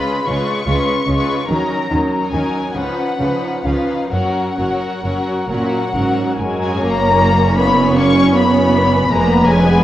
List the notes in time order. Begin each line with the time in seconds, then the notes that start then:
Already playing: G#3 C#4 F4 B4 B5
0.26 C#2 C#3 G#3 C#4 F4 B4 C#6
0.67 C#2 C#3 G#3 C#4 F4 B4
1.07 C#2 C#3 G#3 C#4 F4 B4
1.47 D#2 D#3 F#3 C#4 D#4 A#4 A#5
1.90 D#2 D#3 F#3 C#4 D#4 A#4
2.32 D#2 D#3 F#3 C#4 D#4 A#4 G#5
2.75 C#2 C#3 F3 C#4 D#4 B4 F#5
3.19 C#2 C#3 F3 C#4 D#4 B4
3.64 C#2 C#3 F3 C#4 D#4 B4 F5
4.10 F#1 F#2 F#3 C#4 F#4 A#4 F#5
4.57 F#1 F#2 F#3 C#4 F#4 A#4
5.03 F#1 F#2 F#3 C#4 F#4 A#4
5.49 F#1 A#2 F#3 C#4 F#4 A#4 F#5
5.94 F#1 G#2 F#3 C#4 F#4 A#4
6.39 F#1 F#2 F#3 G#3 C#4 F#4 A#4 G#5
6.80 F#1 F#2 A#3 C#5 A#5
7.01 C#4
7.20 A#3
7.39 C#4
7.57 A#3 B3 B5
7.76 C#4
7.94 A#3 C#4 C#6
8.15 C#4
8.33 A#3 B3 B5
8.52 C#4
8.73 A#3
8.91 C#4
9.10 F1 F2 G#3 A#3 B4 A#5
9.28 B3
9.46 G#3 C#4 G#5
9.65 B3